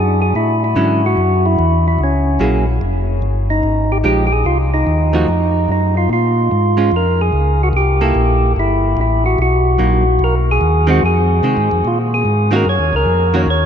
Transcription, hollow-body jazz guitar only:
0.76 1.00 D3 soft
0.76 1.00 F#3 medium
0.76 1.00 C#4 medium
0.76 1.00 E4 medium
2.40 2.64 F#3 medium
2.40 2.65 A#3 soft
2.40 2.65 E4 medium
2.40 2.65 G#4 medium
4.04 4.28 F3 soft
4.04 4.28 G#3 medium
4.04 4.29 D#4 soft
4.04 4.29 G4 medium
5.13 5.26 F3 medium
5.13 5.26 A3 medium
5.13 5.27 D#4 medium
5.13 5.27 F#4 medium
6.77 6.90 G#3 medium
6.77 6.90 C#4 medium
6.77 6.90 F4 medium
8.01 8.53 A#3 medium
8.01 8.53 E4 medium
8.01 8.53 A4 medium
9.78 10.03 F#3 soft
9.78 10.03 A#3 soft
9.78 10.03 D#4 soft
10.87 11.00 D#3 medium
10.87 11.00 G#3 medium
10.87 11.01 C4 medium
11.43 11.67 D#3 soft
11.43 11.68 G#3 medium
11.43 11.68 C4 medium
12.51 12.64 D#3 medium
12.51 12.64 A#3 medium
12.51 12.65 C#4 medium
12.51 12.65 F#4 medium
13.34 13.46 D#3 medium
13.34 13.46 A#3 medium
13.34 13.47 C#4 medium
13.34 13.47 F#4 medium

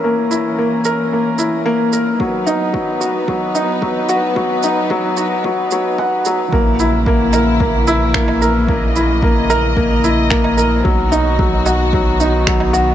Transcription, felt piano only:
0.00 0.04 A#3 medium
0.00 0.31 E4 medium
0.00 0.85 A#4 medium
0.04 0.30 A#3 medium
0.31 0.56 E4 medium
0.58 0.84 A#3 medium
0.85 1.11 A#4 medium
1.13 1.38 A#3 medium
1.38 1.64 E4 medium
1.66 1.91 A#3 loud
1.93 2.19 A#4 medium
2.20 2.46 F#3 medium
2.46 2.62 D#4 medium
2.73 2.99 F#3 medium
3.01 3.16 F#4 medium
3.28 3.54 F#3 medium
3.55 3.81 D#4 medium
3.82 4.08 F#3 medium
4.09 4.35 F#4 medium
4.36 4.62 F#3 medium
4.64 4.89 D#4 medium
4.91 5.16 F#3 loud
5.17 5.43 F#4 medium
5.45 5.70 F#3 medium
5.72 5.97 F#3 medium
5.99 6.25 F#5 medium
6.26 6.52 F#3 medium
6.53 6.79 A#3 medium
6.80 7.05 E4 medium
7.07 7.33 A#3 medium
7.34 7.60 A#4 medium
7.61 7.86 A#3 medium
7.88 8.03 E4 loud
8.15 8.40 A#3 medium
8.42 8.57 A#4 medium
8.69 8.95 A#3 medium
8.96 9.22 E4 medium
9.24 9.49 A#3 medium
9.50 9.75 A#4 loud
9.77 10.02 A#3 medium
10.04 10.30 E4 medium
10.30 10.56 A#3 loud
10.57 10.83 A#4 medium
10.85 11.10 F#3 medium
11.12 11.27 D#4 medium
11.39 11.65 F#3 medium
11.66 11.82 F#4 medium
11.94 12.19 F#3 medium
12.20 12.46 D#4 medium
12.47 12.73 F#3 medium
12.73 12.95 F#4 loud

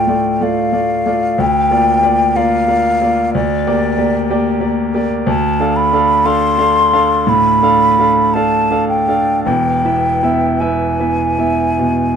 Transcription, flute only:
0.00 0.45 G5 medium
0.43 1.42 F5 medium
1.40 2.38 G5 loud
2.36 3.34 F5 loud
3.35 4.74 D5 medium
5.27 5.78 A5 medium
5.76 6.27 B5 loud
6.26 7.31 C6 loud
7.29 8.35 B5 loud
8.34 8.88 A5 loud
8.89 9.44 G5 medium
9.44 10.61 G5 medium
10.60 12.16 G#5 medium

